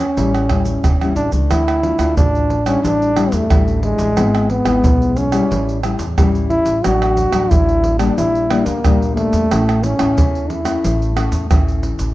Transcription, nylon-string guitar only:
0.18 0.81 A2 medium
0.18 0.46 G3 medium
0.18 0.46 C#4 medium
0.18 0.46 E4 medium
0.50 0.95 G3 soft
0.50 0.95 C#4 medium
0.50 0.96 E4 medium
0.85 1.48 E3 medium
1.02 1.30 G3 medium
1.02 1.30 C#4 medium
1.02 1.30 E4 medium
1.33 1.82 A3 medium
1.33 1.83 D4 medium
1.51 2.14 D3 medium
1.84 1.95 A3 medium
1.84 1.96 D4 medium
1.84 1.96 F4 medium
1.99 2.61 A3 medium
1.99 2.61 D4 medium
1.99 2.62 F4 medium
2.17 2.81 A2 soft
2.66 3.11 G3 medium
2.66 3.12 D4 medium
2.66 3.12 E4 medium
2.83 3.47 A2 medium
3.16 3.45 G3 medium
3.16 3.45 D4 soft
3.16 3.45 E4 medium
3.50 4.14 E3 medium
3.50 4.12 G3 medium
3.50 4.12 D4 medium
3.50 4.12 E4 medium
4.17 4.81 G#2 medium
4.17 4.49 G#3 medium
4.17 4.49 B3 medium
4.17 4.49 E4 medium
4.65 5.28 G#3 medium
4.65 5.28 B3 medium
4.65 5.28 E4 medium
4.84 5.48 G#2 medium
5.32 5.78 G3 medium
5.32 5.78 C#4 medium
5.32 5.78 E4 medium
5.51 6.14 A2 medium
5.84 6.04 G3 medium
5.84 6.04 C#4 medium
5.84 6.04 E4 medium
6.18 6.81 E3 medium
6.18 6.79 G3 medium
6.18 6.79 C#4 medium
6.18 6.79 E4 medium
6.84 7.48 A2 medium
6.84 7.29 F#3 medium
6.84 7.29 A3 medium
6.84 7.29 D4 medium
7.32 7.95 F#3 medium
7.32 7.95 A3 medium
7.32 7.95 D4 medium
7.50 8.14 A2 medium
7.98 8.44 G3 medium
7.98 8.45 A#3 medium
7.98 8.45 D4 medium
8.18 8.81 A#2 medium
8.50 8.78 G3 medium
8.50 8.79 A#3 medium
8.50 8.79 D4 medium
8.84 9.48 A#2 medium
8.84 9.46 G3 medium
8.84 9.46 A#3 medium
8.84 9.46 D4 medium
9.51 10.14 A2 medium
9.51 9.79 A3 medium
9.51 9.79 C#4 medium
9.51 9.79 E4 medium
9.83 9.94 A3 medium
9.83 9.94 C#4 medium
9.83 9.94 E4 medium
9.99 10.61 A3 medium
9.99 10.61 C#4 medium
9.99 10.61 E4 medium
10.17 10.81 E3 medium
10.64 11.11 A3 medium
10.64 11.11 C#4 medium
10.64 11.11 E4 medium
10.84 11.47 A2 medium
11.16 11.45 A3 medium
11.16 11.45 C#4 medium
11.16 11.45 E4 medium
11.51 12.14 E3 medium
11.51 12.12 A3 soft
11.51 12.12 C#4 medium
11.51 12.12 E4 medium

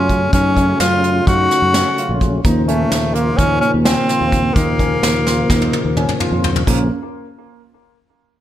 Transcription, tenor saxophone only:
0.00 0.30 C#4 medium
0.33 0.77 C#4 medium
0.81 1.24 F4 medium
1.28 2.17 F#4 medium
2.67 3.16 A3 medium
3.14 3.39 A#3 medium
3.38 3.60 C#4 loud
3.61 3.72 C#4 medium
3.85 4.56 C4 medium
4.54 6.19 A#3 medium

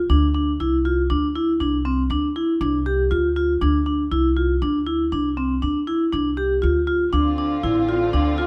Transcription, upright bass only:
0.09 0.56 D2 medium
0.60 1.07 C2 medium
1.10 1.57 D2 medium
1.60 2.07 C2 medium
2.10 2.34 D2 medium
2.61 3.08 C2 medium
3.11 3.58 D2 medium
3.62 4.08 D2 medium
4.11 4.58 C2 medium
4.62 5.09 D2 medium
5.12 5.59 C2 medium
5.62 5.86 D2 medium
6.13 6.59 C2 medium
6.63 7.10 D2 medium
7.13 7.60 D2 medium
7.64 8.10 A1 medium
8.14 8.47 D2 medium

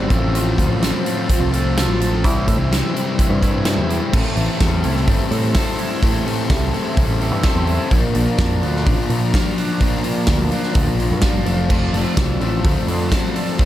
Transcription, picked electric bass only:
0.10 0.54 A1 loud
0.58 0.68 D2 medium
0.68 0.91 A1 medium
1.40 1.87 C2 medium
1.87 2.24 A1 medium
2.24 2.46 C2 loud
2.47 2.57 A2 medium
2.58 2.80 C2 medium
3.30 3.79 G2 medium
3.77 3.99 E2 loud
4.13 4.24 A1 loud
4.36 4.47 A1 loud
4.61 4.82 E2 medium
4.84 5.06 C2 medium
5.08 5.19 G1 medium
5.31 5.53 A2 loud
6.50 6.72 C2 loud
6.97 7.07 C2 loud
7.08 7.32 A1 medium
7.32 7.43 G2 loud
7.55 7.77 E2 medium
7.91 8.02 A#1 loud
8.15 8.26 A#1 loud
8.39 8.60 F2 loud
8.63 8.85 D2 medium
8.86 8.97 A1 medium
9.10 9.31 A#2 loud
10.28 10.49 D2 medium
10.75 10.86 D2 medium
10.87 11.12 A#1 medium
11.11 11.22 G2 loud
11.34 11.45 G1 medium
11.46 11.89 F1 loud
11.93 12.04 F1 loud
12.17 12.39 C2 medium
12.40 12.62 A1 medium
12.64 12.75 D2 loud
12.87 13.09 F2 loud

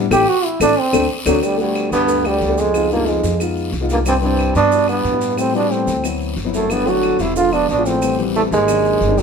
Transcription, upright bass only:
0.11 0.23 A1 loud
0.60 0.72 A1 loud
0.93 1.05 D2 loud
1.26 1.38 D2 loud
1.92 2.38 D2 medium
2.41 3.18 C#2 medium
3.23 3.69 F2 medium
3.73 4.50 C2 medium
4.55 5.01 G2 medium
5.04 5.82 A2 medium
5.87 6.33 D2 medium
6.37 7.14 G1 medium
7.19 7.65 E1 medium
7.69 8.46 A1 medium
8.51 8.97 G#1 medium
9.01 9.22 G1 medium

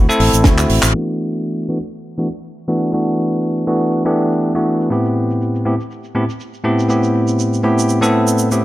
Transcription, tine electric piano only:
0.08 0.42 A3 medium
0.08 0.43 C4 medium
0.08 0.43 E4 medium
0.08 0.43 A4 loud
0.44 0.92 A3 medium
0.44 0.92 C4 medium
0.44 0.92 E4 medium
0.44 0.92 F#4 medium
0.94 1.66 E3 medium
0.94 1.66 A3 medium
0.94 1.66 B3 medium
0.94 1.66 D4 medium
0.94 1.67 F#4 medium
1.69 1.77 E3 medium
1.69 1.77 A3 medium
1.69 1.77 B3 medium
1.69 1.78 D4 medium
1.69 1.78 F#4 medium
2.18 2.27 E3 medium
2.18 2.27 A3 medium
2.18 2.27 B3 medium
2.18 2.27 D4 medium
2.18 2.27 F#4 medium
2.68 2.90 E3 medium
2.68 2.90 A3 medium
2.68 2.90 B3 medium
2.68 2.90 D4 medium
2.68 2.91 F#4 medium
2.92 3.64 E3 medium
2.92 3.64 A3 medium
2.92 3.65 B3 medium
2.92 3.65 D4 medium
2.92 3.65 F#4 medium
3.67 4.02 E3 medium
3.67 4.02 A3 medium
3.67 4.02 B3 medium
3.67 4.03 D4 medium
3.67 4.03 F#4 medium
4.05 4.52 E3 medium
4.05 4.52 A3 medium
4.05 4.52 B3 medium
4.05 4.52 D4 medium
4.05 4.52 G4 medium
4.55 4.88 E3 medium
4.55 4.88 A3 medium
4.55 4.89 B3 medium
4.55 4.89 D4 medium
4.55 4.89 F#4 medium
4.90 5.62 A2 medium
4.90 5.63 B3 medium
4.90 5.63 C4 medium
4.90 5.63 E4 medium
4.90 5.63 G4 medium
5.65 5.74 A2 medium
5.65 5.74 B3 medium
5.65 5.74 C4 medium
5.65 5.74 E4 medium
5.65 5.74 G4 medium
6.15 6.23 A2 medium
6.15 6.23 B3 medium
6.15 6.24 C4 medium
6.15 6.24 E4 medium
6.15 6.24 G4 medium
6.64 6.87 A2 medium
6.64 6.87 B3 medium
6.64 6.87 C4 medium
6.64 6.87 E4 medium
6.64 6.87 G4 medium
6.88 7.61 A2 medium
6.88 7.61 B3 medium
6.88 7.61 C4 medium
6.88 7.61 E4 medium
6.88 7.62 G4 medium
7.63 7.99 A2 medium
7.63 7.99 B3 medium
7.63 7.99 C4 medium
7.63 7.99 E4 medium
7.63 7.99 G4 medium
8.01 8.48 A2 medium
8.01 8.48 B3 medium
8.01 8.48 C4 medium
8.01 8.49 E4 medium
8.01 8.49 A4 loud
8.51 8.65 A2 medium
8.51 8.65 B3 medium
8.51 8.65 C4 medium
8.51 8.65 E4 medium
8.51 8.65 G4 medium

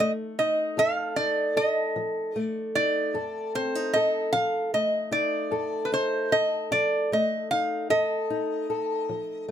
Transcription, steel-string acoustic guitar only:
0.00 0.31 F3 medium
0.00 2.35 A3 medium
0.00 0.39 D#4 medium
0.00 0.78 A4 medium
0.39 1.17 D#4 medium
0.77 1.49 F2 medium
0.77 1.56 A4 medium
1.17 2.76 D#4 medium
1.56 3.14 A4 medium
1.96 2.68 F3 medium
2.36 4.73 A3 medium
2.76 3.17 D#4 medium
3.14 3.86 F2 medium
3.14 3.95 A4 medium
3.55 3.75 C4 medium
3.75 5.10 D#4 soft
3.96 5.51 A4 medium
4.34 5.05 F3 medium
4.74 7.12 A3 medium
5.11 5.92 D#4 medium
5.51 6.23 F2 medium
5.51 6.32 A4 medium
5.92 7.52 D#4 medium
6.32 7.90 A4 medium
6.71 7.43 F3 medium
7.12 9.48 A3 medium
7.52 7.93 D#4 medium
7.90 8.61 F2 medium
7.90 8.69 A4 medium
8.30 9.51 D#4 medium
8.70 9.51 A4 medium
9.09 9.51 F3 medium

